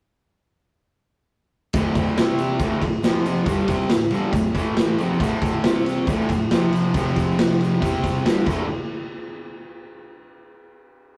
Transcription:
1.73 distorted electric guitar D2 A2, kick, ride, shaker
1.77 distorted electric guitar D3
1.95 kick, ride, shaker
2.08 shaker
2.17 distorted electric guitar C3 G3 C4, snare, ride, shaker
2.39 ride, shaker
2.59 distorted electric guitar D2 A2, kick, ride, shaker
2.63 distorted electric guitar D3
2.71 shaker
2.82 distorted electric guitar D2 A2, kick, ride
3.04 distorted electric guitar F2 C3 F3, snare, ride, shaker
3.26 ride, shaker
3.37 shaker
3.46 distorted electric guitar G2 D3 G3, kick, ride, shaker
3.60 shaker
3.68 distorted electric guitar C3 G3 C4, kick, ride, shaker
3.89 distorted electric guitar D2 A2, snare, ride, shaker
4.11 distorted electric guitar G2 D3 G3, ride, shaker
4.33 distorted electric guitar D2 A2, kick, ride, shaker
4.54 distorted electric guitar A2 E3 A3, kick, ride
4.58 shaker
4.77 snare, ride, shaker
4.98 distorted electric guitar F2 C3 F3, ride, shaker
5.12 shaker
5.20 distorted electric guitar D2 A2 D3, kick, ride, shaker
5.42 kick, ride, shaker
5.63 distorted electric guitar C3 G3 C4, snare, ride, shaker
5.79 shaker
5.86 ride, shaker
6.07 distorted electric guitar D2 A2 D3, kick, ride, shaker
6.21 shaker
6.29 distorted electric guitar D2 A2, kick, ride, shaker
6.51 distorted electric guitar F2 C3 F3, snare, ride, shaker
6.72 ride, shaker
6.94 distorted electric guitar F2 C3 F3, kick, ride, shaker
7.16 kick, ride, shaker
7.31 shaker
7.39 snare, ride, shaker
7.61 ride, shaker
7.81 distorted electric guitar C3 G3 C4, kick, ride
7.85 shaker
7.96 shaker
8.04 kick, ride, shaker
8.17 shaker
8.24 distorted electric guitar G2 D3 G3, snare, ride
8.29 shaker
8.39 shaker
8.46 distorted electric guitar D2 A2 D3, kick, crash, shaker

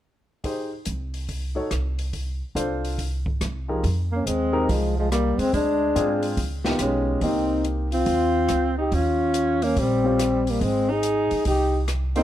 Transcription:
0.44 upright piano D#4 G4 G#4 C5, kick, open hi-hat
0.85 upright bass C2, closed hi-hat
1.14 open hi-hat
1.29 kick, open hi-hat
1.55 upright piano D#4 F#4 A4 C#5
1.71 upright bass C2, cross-stick, closed hi-hat
1.99 open hi-hat
2.13 kick, open hi-hat
2.55 upright bass C2, upright piano D4 F4 A4 C5, closed hi-hat
2.85 open hi-hat
2.98 kick, open hi-hat
3.26 kick
3.41 upright bass C2, cross-stick, closed hi-hat
3.68 upright piano F3 D#4 G4 G#4 A#4
3.83 upright bass F2, kick, open hi-hat
4.12 alto saxophone A#3, trombone C#4
4.25 upright bass D#2, alto saxophone G#3, trombone C4, closed hi-hat
4.52 upright piano D#4 G4 G#4 A#4
4.68 upright bass C2, alto saxophone F3, trombone G#3, kick, open hi-hat
4.98 alto saxophone F3, trombone G#3
5.11 alto saxophone G3, trombone A#3, cross-stick, closed hi-hat
5.38 upright bass C#2, alto saxophone G#3, trombone C4, open hi-hat
5.53 upright bass D2, alto saxophone G#3, trombone D4, kick, open hi-hat
5.95 upright bass G#2, upright piano C4 D4 F4 G#4, closed hi-hat
6.23 open hi-hat
6.37 upright bass C#2, kick, open hi-hat
6.64 upright piano B3 D#4 F4 G4, snare
6.79 upright bass B1, alto saxophone G#3, trombone C#4, cross-stick, closed hi-hat
7.21 upright bass C2, upright piano A#3 C4 D#4 G4, alto saxophone C4, trombone D#4, kick, open hi-hat
7.65 closed hi-hat
7.92 alto saxophone C4, trombone F4, open hi-hat
8.06 upright bass D#2, kick, open hi-hat
8.49 upright bass C#2, cross-stick, closed hi-hat
8.78 alto saxophone D#4, trombone G4
8.92 upright bass D#2, alto saxophone C#4, trombone F4, kick, open hi-hat
9.34 closed hi-hat
9.62 alto saxophone A#3, trombone C#4, open hi-hat
9.77 upright bass A#1, alto saxophone G3, kick, open hi-hat
9.81 trombone C4
10.04 upright piano C4 C#4 F4 G4
10.19 cross-stick, closed hi-hat
10.47 alto saxophone G3, trombone A#3, open hi-hat
10.60 upright bass G#1, alto saxophone G#3, trombone C4, kick, open hi-hat
10.89 alto saxophone D#4, trombone G#4
11.03 closed hi-hat
11.31 muted upright bass stroke, open hi-hat
11.45 upright bass C2, alto saxophone D#4, trombone G4, kick, open hi-hat
11.88 cross-stick, closed hi-hat
12.15 upright piano A#3 D4 F4 A4, alto saxophone C4, trombone D#4, open hi-hat

